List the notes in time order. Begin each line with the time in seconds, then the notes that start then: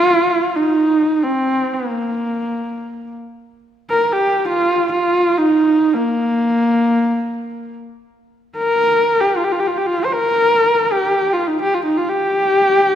Already playing: F4
0.56 D#4
1.23 C4
1.73 A#3
3.90 A#4
4.04 A#4
4.13 G4
4.48 F4
4.93 F4
5.37 D#4
5.93 A#3
8.57 A#4
9.20 G4
9.37 F4
9.44 G4
9.52 F4
9.59 G4
9.67 F4
9.77 G4
9.87 F4
10.04 C5
10.13 A#4
10.92 G4
11.33 F4
11.47 D#4
11.61 G4
11.74 F4
11.85 D#4
11.97 F4
12.09 G4